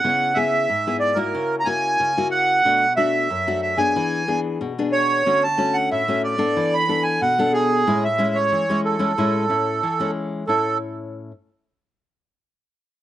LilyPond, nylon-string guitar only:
\new Staff \with { instrumentName = "Nylon-string guitar" } { \time 4/4 \key a \major \tempo 4 = 92 << { <b e' gis'>8 <b e' gis'>8 r16 <b e' gis'>8 <bes e' fis'>8. <ais e' fis'>8. <ais e' fis'>8. | <a d' fis'>16 r16 <a d' fis'>8 r16 <a d' fis'>8 <b d' gis'>8. <b d' gis'>8. <b d' gis'>8. | <a cis' fis'>16 r16 <a cis' fis'>8. <a cis' fis'>8 <b d' a'>8. <b d' a'>8. <b d' a'>8. | <gis cis' e'>16 r16 <gis cis' e'>8. <gis cis' e'>8 <gis cis' e'>16 <gis cis' e'>8 <cis' e'>8 r16 <gis cis' e'>8. |
<a, cis' e'>8 r2. r8 | } \\ { cis4 gis,4 cis4 cis4 | b,4 fis,4 e4 b,4 | d4 a,4 e4 b,4 | a,4 e4 a,4 e4 |
r1 | } >> }